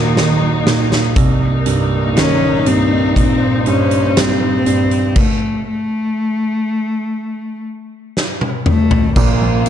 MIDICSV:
0, 0, Header, 1, 5, 480
1, 0, Start_track
1, 0, Tempo, 1000000
1, 559, Time_signature, 4, 2, 24, 8
1, 4652, End_track
2, 0, Start_track
2, 0, Title_t, "Cello"
2, 0, Program_c, 0, 42
2, 0, Note_on_c, 0, 58, 70
2, 324, Note_off_c, 0, 58, 0
2, 1039, Note_on_c, 0, 61, 99
2, 1279, Note_on_c, 0, 60, 89
2, 1286, Note_off_c, 0, 61, 0
2, 1519, Note_off_c, 0, 60, 0
2, 1523, Note_on_c, 0, 60, 88
2, 1744, Note_off_c, 0, 60, 0
2, 1763, Note_on_c, 0, 61, 89
2, 2006, Note_on_c, 0, 60, 89
2, 2013, Note_off_c, 0, 61, 0
2, 2491, Note_on_c, 0, 57, 78
2, 2499, Note_off_c, 0, 60, 0
2, 2724, Note_off_c, 0, 57, 0
2, 2727, Note_on_c, 0, 57, 79
2, 3664, Note_off_c, 0, 57, 0
2, 4164, Note_on_c, 0, 57, 78
2, 4385, Note_off_c, 0, 57, 0
2, 4398, Note_on_c, 0, 58, 89
2, 4652, Note_off_c, 0, 58, 0
2, 4652, End_track
3, 0, Start_track
3, 0, Title_t, "String section"
3, 0, Program_c, 1, 48
3, 0, Note_on_c, 1, 51, 64
3, 0, Note_on_c, 1, 54, 61
3, 0, Note_on_c, 1, 63, 70
3, 536, Note_off_c, 1, 54, 0
3, 537, Note_off_c, 1, 51, 0
3, 550, Note_off_c, 1, 63, 0
3, 559, Note_on_c, 1, 58, 58
3, 562, Note_on_c, 1, 46, 64
3, 562, Note_on_c, 1, 63, 71
3, 1509, Note_off_c, 1, 58, 0
3, 1520, Note_on_c, 1, 72, 58
3, 2461, Note_off_c, 1, 46, 0
3, 2461, Note_off_c, 1, 63, 0
3, 2470, Note_off_c, 1, 72, 0
3, 4393, Note_on_c, 1, 49, 72
3, 4394, Note_on_c, 1, 58, 65
3, 4394, Note_on_c, 1, 65, 83
3, 4652, Note_off_c, 1, 49, 0
3, 4652, Note_off_c, 1, 58, 0
3, 4652, Note_off_c, 1, 65, 0
3, 4652, End_track
4, 0, Start_track
4, 0, Title_t, "Grand piano"
4, 0, Program_c, 2, 0
4, 0, Control_c, 2, 64, 127
4, 0, Note_on_c, 2, 39, 61
4, 0, Note_on_c, 2, 46, 45
4, 0, Note_on_c, 2, 51, 47
4, 0, Note_on_c, 2, 54, 55
4, 59, Note_off_c, 2, 54, 0
4, 71, Note_off_c, 2, 51, 0
4, 78, Note_on_c, 2, 51, 52
4, 309, Note_off_c, 2, 46, 0
4, 316, Note_on_c, 2, 46, 47
4, 539, Note_off_c, 2, 39, 0
4, 544, Note_off_c, 2, 51, 0
4, 550, Note_off_c, 2, 46, 0
4, 557, Note_on_c, 2, 36, 63
4, 564, Control_c, 2, 64, 0
4, 662, Control_c, 2, 64, 127
4, 797, Note_on_c, 2, 43, 47
4, 1038, Note_on_c, 2, 51, 57
4, 1272, Note_off_c, 2, 43, 0
4, 1279, Note_on_c, 2, 43, 50
4, 1523, Note_on_c, 2, 46, 50
4, 1754, Note_off_c, 2, 43, 0
4, 1761, Note_on_c, 2, 43, 49
4, 1979, Note_off_c, 2, 51, 0
4, 2000, Note_on_c, 2, 55, 57
4, 2231, Note_off_c, 2, 43, 0
4, 2238, Note_on_c, 2, 43, 49
4, 2459, Note_off_c, 2, 36, 0
4, 2462, Note_off_c, 2, 46, 0
4, 2465, Note_off_c, 2, 55, 0
4, 2471, Note_off_c, 2, 43, 0
4, 2484, Control_c, 2, 64, 0
4, 4400, Note_on_c, 2, 46, 70
4, 4401, Note_on_c, 2, 34, 65
4, 4503, Control_c, 2, 64, 127
4, 4520, Note_on_c, 2, 53, 48
4, 4634, Note_off_c, 2, 46, 0
4, 4652, Note_off_c, 2, 34, 0
4, 4652, Note_off_c, 2, 53, 0
4, 4652, End_track
5, 0, Start_track
5, 0, Title_t, "Drums"
5, 83, Note_on_c, 9, 38, 75
5, 131, Note_off_c, 9, 38, 0
5, 320, Note_on_c, 9, 38, 84
5, 368, Note_off_c, 9, 38, 0
5, 442, Note_on_c, 9, 38, 73
5, 490, Note_off_c, 9, 38, 0
5, 557, Note_on_c, 9, 42, 73
5, 558, Note_on_c, 9, 36, 101
5, 605, Note_off_c, 9, 42, 0
5, 606, Note_off_c, 9, 36, 0
5, 796, Note_on_c, 9, 42, 79
5, 844, Note_off_c, 9, 42, 0
5, 1039, Note_on_c, 9, 42, 58
5, 1044, Note_on_c, 9, 38, 82
5, 1087, Note_off_c, 9, 42, 0
5, 1092, Note_off_c, 9, 38, 0
5, 1277, Note_on_c, 9, 42, 68
5, 1325, Note_off_c, 9, 42, 0
5, 1518, Note_on_c, 9, 36, 69
5, 1520, Note_on_c, 9, 42, 75
5, 1566, Note_off_c, 9, 36, 0
5, 1568, Note_off_c, 9, 42, 0
5, 1756, Note_on_c, 9, 42, 55
5, 1804, Note_off_c, 9, 42, 0
5, 1877, Note_on_c, 9, 42, 48
5, 1925, Note_off_c, 9, 42, 0
5, 2000, Note_on_c, 9, 42, 88
5, 2003, Note_on_c, 9, 38, 95
5, 2048, Note_off_c, 9, 42, 0
5, 2051, Note_off_c, 9, 38, 0
5, 2237, Note_on_c, 9, 42, 61
5, 2285, Note_off_c, 9, 42, 0
5, 2357, Note_on_c, 9, 42, 42
5, 2405, Note_off_c, 9, 42, 0
5, 2475, Note_on_c, 9, 49, 81
5, 2477, Note_on_c, 9, 36, 96
5, 2523, Note_off_c, 9, 49, 0
5, 2525, Note_off_c, 9, 36, 0
5, 3921, Note_on_c, 9, 38, 51
5, 3969, Note_off_c, 9, 38, 0
5, 4038, Note_on_c, 9, 48, 56
5, 4086, Note_off_c, 9, 48, 0
5, 4156, Note_on_c, 9, 45, 79
5, 4204, Note_off_c, 9, 45, 0
5, 4277, Note_on_c, 9, 43, 85
5, 4325, Note_off_c, 9, 43, 0
5, 4397, Note_on_c, 9, 36, 103
5, 4397, Note_on_c, 9, 49, 89
5, 4403, Note_on_c, 9, 54, 51
5, 4445, Note_off_c, 9, 36, 0
5, 4445, Note_off_c, 9, 49, 0
5, 4451, Note_off_c, 9, 54, 0
5, 4635, Note_on_c, 9, 51, 71
5, 4652, Note_off_c, 9, 51, 0
5, 4652, End_track
0, 0, End_of_file